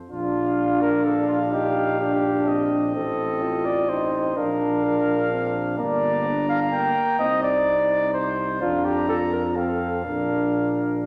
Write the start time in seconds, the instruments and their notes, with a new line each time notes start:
0.10 bass trombone A#1, trombone D4, french horn D4, flugelhorn F4, trumpet F5
0.81 flugelhorn A#4
1.05 flugelhorn A4
1.28 flugelhorn F4
1.52 french horn D#4, flugelhorn G4
2.00 french horn D4, flugelhorn G4
2.47 trombone C4, trumpet D#5
2.95 bass trombone A1, french horn C4, flugelhorn A4
3.42 french horn F4
3.65 flugelhorn D5
3.89 french horn D#4, flugelhorn C5
4.37 bass trombone A#1, french horn D4, trombone D4, flugelhorn A#4, trumpet F5
4.85 flugelhorn A#4
5.31 french horn C4
5.78 bass trombone G1, french horn A#3, flugelhorn D5, trumpet A#5
6.26 french horn D4
6.49 flugelhorn F5
6.72 french horn A#3, flugelhorn G5
7.19 bass trombone C2, french horn C4, trombone D#4, flugelhorn D#5
7.43 flugelhorn D5
8.14 flugelhorn C5
8.61 bass trombone F2, french horn D4, trombone D4, flugelhorn F4, trumpet A#5
8.85 flugelhorn G4
9.08 french horn F4, flugelhorn A4
9.32 flugelhorn A#4
9.56 trombone C4, french horn C4, flugelhorn A4, trumpet F5
10.05 bass trombone A#1, trombone D4, french horn D4, flugelhorn A#4